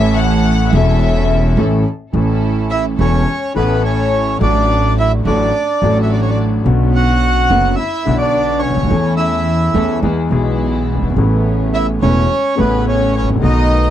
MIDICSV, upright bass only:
0, 0, Header, 1, 2, 480
1, 0, Start_track
1, 0, Key_signature, 3, "major"
1, 0, Tempo, 564440
1, 1831, Time_signature, 4, 2, 24, 8
1, 11822, End_track
2, 0, Start_track
2, 0, Title_t, "Upright bass"
2, 0, Program_c, 0, 32
2, 0, Note_on_c, 0, 33, 102
2, 584, Note_off_c, 0, 33, 0
2, 618, Note_on_c, 0, 28, 104
2, 1308, Note_off_c, 0, 28, 0
2, 1334, Note_on_c, 0, 33, 91
2, 1544, Note_off_c, 0, 33, 0
2, 1816, Note_on_c, 0, 33, 86
2, 2509, Note_off_c, 0, 33, 0
2, 2541, Note_on_c, 0, 28, 92
2, 2749, Note_off_c, 0, 28, 0
2, 3026, Note_on_c, 0, 33, 71
2, 3712, Note_off_c, 0, 33, 0
2, 3749, Note_on_c, 0, 33, 93
2, 4433, Note_off_c, 0, 33, 0
2, 4467, Note_on_c, 0, 33, 89
2, 4670, Note_off_c, 0, 33, 0
2, 4948, Note_on_c, 0, 33, 74
2, 5631, Note_off_c, 0, 33, 0
2, 5661, Note_on_c, 0, 35, 90
2, 6344, Note_off_c, 0, 35, 0
2, 6380, Note_on_c, 0, 30, 92
2, 6582, Note_off_c, 0, 30, 0
2, 6860, Note_on_c, 0, 35, 73
2, 7398, Note_off_c, 0, 35, 0
2, 7403, Note_on_c, 0, 37, 47
2, 7448, Note_off_c, 0, 37, 0
2, 7454, Note_on_c, 0, 38, 53
2, 7509, Note_off_c, 0, 38, 0
2, 7514, Note_on_c, 0, 39, 62
2, 7567, Note_off_c, 0, 39, 0
2, 7572, Note_on_c, 0, 40, 92
2, 8258, Note_off_c, 0, 40, 0
2, 8286, Note_on_c, 0, 40, 92
2, 8493, Note_off_c, 0, 40, 0
2, 8525, Note_on_c, 0, 40, 80
2, 8734, Note_off_c, 0, 40, 0
2, 8765, Note_on_c, 0, 35, 74
2, 9309, Note_off_c, 0, 35, 0
2, 9315, Note_on_c, 0, 30, 41
2, 9361, Note_off_c, 0, 30, 0
2, 9366, Note_on_c, 0, 31, 51
2, 9430, Note_off_c, 0, 31, 0
2, 9435, Note_on_c, 0, 32, 63
2, 9490, Note_off_c, 0, 32, 0
2, 9495, Note_on_c, 0, 33, 83
2, 10184, Note_off_c, 0, 33, 0
2, 10226, Note_on_c, 0, 28, 90
2, 10427, Note_off_c, 0, 28, 0
2, 10706, Note_on_c, 0, 33, 77
2, 11240, Note_off_c, 0, 33, 0
2, 11245, Note_on_c, 0, 32, 49
2, 11304, Note_off_c, 0, 32, 0
2, 11308, Note_on_c, 0, 33, 52
2, 11366, Note_off_c, 0, 33, 0
2, 11370, Note_on_c, 0, 34, 62
2, 11422, Note_off_c, 0, 34, 0
2, 11427, Note_on_c, 0, 35, 87
2, 11822, Note_off_c, 0, 35, 0
2, 11822, End_track
0, 0, End_of_file